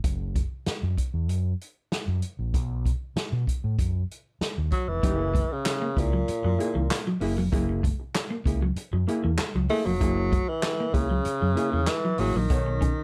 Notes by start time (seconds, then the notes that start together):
0.04 F#1, kick, closed hi-hat
0.35 kick, closed hi-hat
0.66 muted fingered electric bass stroke, snare, closed hi-hat
0.83 F#2
0.98 kick, closed hi-hat
1.14 E2
1.29 F#2, closed hi-hat
1.61 closed hi-hat
1.92 snare, closed hi-hat
2.08 F#2
2.22 closed hi-hat
2.39 A#1
2.54 B1, kick, closed hi-hat
2.86 kick, closed hi-hat
3.16 muted fingered electric bass stroke, snare, closed hi-hat
3.32 B2
3.47 kick, closed hi-hat
3.64 A2
3.79 F#2, kick, closed hi-hat
4.11 closed hi-hat
4.41 muted fingered electric bass stroke, snare, closed hi-hat
4.58 D#2
4.72 F#3, kick, closed hi-hat
4.88 F1 E3
5.03 F#1 F#3 A3 D#4 G4, kick, closed hi-hat
5.15 A#3 E4 G#4
5.19 muted clean electric guitar stroke
5.34 A3, kick, closed hi-hat
5.51 C#3, muted hollow-body jazz guitar stroke
5.65 muted hollow-body jazz guitar stroke, snare, clap, closed hi-hat
5.82 A#3
5.96 C#2 A#2 A#3 E4 G#4, muted clean electric guitar stroke, kick, closed hi-hat
6.13 F#3, muted hollow-body jazz guitar stroke
6.28 muted hollow-body jazz guitar stroke, muted fingered electric bass stroke, closed hi-hat
6.44 F#2 F#3, muted hollow-body jazz guitar stroke
6.59 A#3 E4 G#4, muted clean electric guitar stroke, closed hi-hat
6.75 C#2 E3, muted hollow-body jazz guitar stroke
6.90 muted hollow-body jazz guitar stroke, snare, clap, closed hi-hat
7.07 F#3, muted hollow-body jazz guitar stroke
7.21 F#1 A#3 E4 G#4, muted clean electric guitar stroke, open hi-hat
7.37 F1 F#3, muted hollow-body jazz guitar stroke
7.52 F#1 F#3 A#3 E4 G#4, kick, closed hi-hat
7.69 muted clean electric guitar stroke
7.83 A3, kick, closed hi-hat
8.00 muted hollow-body jazz guitar stroke
8.15 muted hollow-body jazz guitar stroke, snare, clap, closed hi-hat
8.30 A#3
8.45 C#2 A#3 E4 G#4, muted clean electric guitar stroke, kick, closed hi-hat
8.62 F#3, muted hollow-body jazz guitar stroke
8.76 muted fingered electric bass stroke, muted hollow-body jazz guitar stroke, closed hi-hat
8.93 F#2 F#3, muted hollow-body jazz guitar stroke
9.07 A#3 E4 G#4, muted clean electric guitar stroke, closed hi-hat
9.24 E2 E3, muted hollow-body jazz guitar stroke
9.38 muted hollow-body jazz guitar stroke, muted fingered electric bass stroke, snare, clap, closed hi-hat
9.55 C#2 F#3, muted hollow-body jazz guitar stroke
9.69 A3 A#3 E4 G#4, muted clean electric guitar stroke, open hi-hat
9.86 F1 F#3, muted hollow-body jazz guitar stroke
10.00 F#1 F#3 A#3 E4 G#4, kick, closed hi-hat
10.18 muted clean electric guitar stroke
10.32 A3, kick, closed hi-hat
10.48 E3, muted hollow-body jazz guitar stroke
10.62 muted hollow-body jazz guitar stroke, snare, clap, closed hi-hat
10.80 A#3
10.93 C#2 C#3 A#3 E4 G#4, muted clean electric guitar stroke, kick, closed hi-hat
11.10 F#3, muted hollow-body jazz guitar stroke
11.24 muted hollow-body jazz guitar stroke, muted fingered electric bass stroke, closed hi-hat
11.41 F#2 F#3, muted hollow-body jazz guitar stroke
11.55 A#3 E4 G#4, muted clean electric guitar stroke, closed hi-hat
11.72 E2 E3, muted hollow-body jazz guitar stroke
11.87 E3, muted hollow-body jazz guitar stroke, snare, clap, closed hi-hat
12.04 F#3, muted hollow-body jazz guitar stroke
12.18 A1 F#3 A#3 E4 G#4, muted clean electric guitar stroke, open hi-hat
12.35 A#1 D#3 F#3, muted hollow-body jazz guitar stroke
12.50 B1 B3 D#4 A4 C#5, kick, closed hi-hat
12.66 muted clean electric guitar stroke
12.81 C#4, kick, closed hi-hat
12.98 muted hollow-body jazz guitar stroke